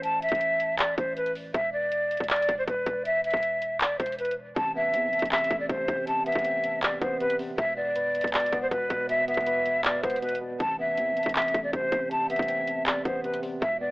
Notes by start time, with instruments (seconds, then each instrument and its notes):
Already playing: 808-style bass A1
0.03 flute A5, closed hi-hat
0.22 flute E5, closed hi-hat
0.29 808-style bass A1, kick, closed hi-hat
0.35 closed hi-hat
0.41 closed hi-hat
0.60 closed hi-hat
0.79 flute D5, clap, closed hi-hat
0.98 808-style bass A1, flute C5, kick, closed hi-hat
1.16 flute B4, closed hi-hat
1.26 closed hi-hat
1.35 open hi-hat
1.54 808-style bass E1, flute E5, kick, closed hi-hat
1.73 flute D5
1.92 closed hi-hat
2.11 closed hi-hat
2.17 808-style bass E1, kick, closed hi-hat
2.24 closed hi-hat
2.30 flute D5, clap, closed hi-hat
2.36 closed hi-hat
2.42 closed hi-hat
2.49 808-style bass E1, kick, closed hi-hat
2.58 flute C5
2.68 808-style bass E1, flute B4, kick, closed hi-hat
2.86 808-style bass E1, kick, closed hi-hat
3.05 flute E5, closed hi-hat
3.24 flute E5, closed hi-hat
3.31 808-style bass E1, kick, closed hi-hat
3.37 closed hi-hat
3.43 closed hi-hat
3.62 closed hi-hat
3.81 flute D5, clap, closed hi-hat
3.99 808-style bass E1, flute C5, kick, closed hi-hat
4.06 closed hi-hat
4.12 closed hi-hat
4.19 flute B4, closed hi-hat
4.25 closed hi-hat
4.31 closed hi-hat
4.56 808-style bass A1, tine electric piano C3, flute A5, kick, closed hi-hat
4.75 tine electric piano B3, flute E5
4.94 808-style bass E2, tine electric piano C4, closed hi-hat
5.08 808-style bass A1
5.13 closed hi-hat
5.19 808-style bass A1, kick, closed hi-hat
5.25 closed hi-hat
5.31 tine electric piano C3, flute E5, clap, closed hi-hat
5.38 closed hi-hat
5.44 closed hi-hat
5.51 808-style bass A1, tine electric piano A3, kick, closed hi-hat
5.60 flute D5
5.69 808-style bass A1, tine electric piano C3, flute C5, kick, closed hi-hat
5.88 808-style bass A1, tine electric piano C3, kick, closed hi-hat
6.07 tine electric piano C3, flute A5, closed hi-hat
6.26 tine electric piano B3, flute E5, closed hi-hat
6.32 808-style bass A1, kick, closed hi-hat
6.39 closed hi-hat
6.45 tine electric piano C4, closed hi-hat
6.64 closed hi-hat
6.82 tine electric piano C3, flute D5, clap, closed hi-hat
7.01 808-style bass A1, tine electric piano B3, flute C5, kick, closed hi-hat
7.20 tine electric piano C3, flute B4, closed hi-hat
7.30 closed hi-hat
7.39 tine electric piano C3, open hi-hat
7.58 808-style bass E1, tine electric piano B2, flute E5, kick, closed hi-hat
7.76 tine electric piano B3, flute D5
7.96 tine electric piano B4, closed hi-hat
8.15 closed hi-hat
8.21 808-style bass E1, kick, closed hi-hat
8.27 closed hi-hat
8.34 tine electric piano B2, flute D5, clap, closed hi-hat
8.40 closed hi-hat
8.46 closed hi-hat
8.52 808-style bass E1, tine electric piano B3, kick, closed hi-hat
8.62 flute C5
8.71 808-style bass E1, tine electric piano B2, flute B4, kick, closed hi-hat
8.90 808-style bass E1, tine electric piano B2, kick, closed hi-hat
9.09 tine electric piano B2, flute E5, closed hi-hat
9.28 tine electric piano B3, flute E5, closed hi-hat
9.34 808-style bass E1, kick, closed hi-hat
9.41 closed hi-hat
9.46 tine electric piano B4, closed hi-hat
9.66 closed hi-hat
9.84 tine electric piano B2, flute D5, clap, closed hi-hat
10.03 808-style bass E1, tine electric piano B3, flute C5, kick, closed hi-hat
10.10 closed hi-hat
10.16 closed hi-hat
10.22 tine electric piano B2, flute B4, closed hi-hat
10.29 closed hi-hat
10.35 closed hi-hat
10.41 tine electric piano B2
10.60 808-style bass A1, tine electric piano C3, flute A5, kick, closed hi-hat
10.79 tine electric piano B3, flute E5
10.97 808-style bass E2, tine electric piano C4, closed hi-hat
11.12 808-style bass A1
11.17 closed hi-hat
11.23 808-style bass A1, kick, closed hi-hat
11.29 closed hi-hat
11.35 tine electric piano C3, flute E5, clap, closed hi-hat
11.42 closed hi-hat
11.48 closed hi-hat
11.54 808-style bass A1, tine electric piano A3, kick, closed hi-hat
11.64 flute D5
11.73 808-style bass A1, tine electric piano C3, flute C5, kick, closed hi-hat
11.92 808-style bass A1, tine electric piano C3, kick, closed hi-hat
12.11 tine electric piano C3, flute A5, closed hi-hat
12.30 tine electric piano B3, flute E5, closed hi-hat
12.36 808-style bass A1, kick, closed hi-hat
12.42 closed hi-hat
12.48 tine electric piano C4, closed hi-hat
12.67 closed hi-hat
12.86 tine electric piano C3, flute D5, clap, closed hi-hat
13.05 808-style bass A1, tine electric piano B3, flute C5, kick, closed hi-hat
13.24 tine electric piano C3, flute B4, closed hi-hat
13.34 closed hi-hat
13.43 tine electric piano C3, open hi-hat
13.62 808-style bass E1, tine electric piano B2, flute E5, kick, closed hi-hat
13.80 tine electric piano B3, flute D5